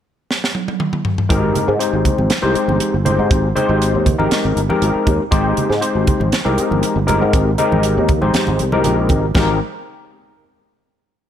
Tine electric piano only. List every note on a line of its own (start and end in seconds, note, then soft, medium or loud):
1.29 1.71 G#3 medium
1.29 1.71 C4 medium
1.29 1.71 D#4 medium
1.29 1.71 G4 medium
1.29 1.71 A#4 medium
1.79 2.31 G#3 medium
1.79 2.31 C4 medium
1.79 2.31 D#4 medium
1.79 2.31 G4 medium
1.79 2.31 C5 medium
2.42 2.94 G#3 medium
2.42 2.94 C4 medium
2.42 2.94 D#4 medium
2.42 2.94 G4 medium
2.42 2.94 C5 medium
3.05 3.47 G#3 medium
3.05 3.47 C4 medium
3.05 3.47 D#4 medium
3.05 3.47 G4 medium
3.05 3.47 C5 medium
3.55 4.07 G#3 medium
3.55 4.07 C4 medium
3.55 4.07 D#4 medium
3.55 4.07 G4 medium
3.55 4.07 C5 loud
4.18 4.60 G#3 medium
4.18 4.60 C4 medium
4.18 4.60 D#4 medium
4.18 4.60 G4 medium
4.18 4.60 A#4 medium
4.69 5.21 G#3 medium
4.69 5.21 C4 medium
4.69 5.21 D#4 medium
4.69 5.21 G4 medium
4.69 5.21 A#4 loud
5.31 5.73 G#3 medium
5.31 5.73 C4 medium
5.31 5.73 D#4 medium
5.31 5.73 G4 medium
5.31 5.73 C5 medium
5.81 6.33 G#3 medium
5.81 6.34 C4 medium
5.81 6.34 D#4 medium
5.81 6.34 G4 medium
5.81 6.34 C5 medium
6.45 6.97 G#3 medium
6.45 6.97 C4 medium
6.45 6.97 D#4 medium
6.45 6.97 G4 medium
6.45 6.97 A#4 medium
7.07 7.49 G#3 medium
7.07 7.49 C4 medium
7.07 7.49 D#4 medium
7.07 7.49 G4 medium
7.07 7.50 A#4 medium
7.58 8.10 G#3 medium
7.58 8.10 C4 medium
7.58 8.10 D#4 medium
7.58 8.10 G4 medium
7.58 8.10 A#4 medium
8.21 8.63 G#3 medium
8.21 8.63 C4 medium
8.21 8.63 D#4 medium
8.21 8.63 G4 medium
8.21 8.63 C5 medium
8.72 9.24 G#3 medium
8.72 9.24 C4 medium
8.72 9.24 D#4 medium
8.72 9.24 G4 medium
8.72 9.24 A#4 medium
9.34 9.58 G#3 medium
9.34 9.58 C4 medium
9.34 9.58 D#4 medium
9.34 9.58 G4 medium
9.34 9.58 A#4 medium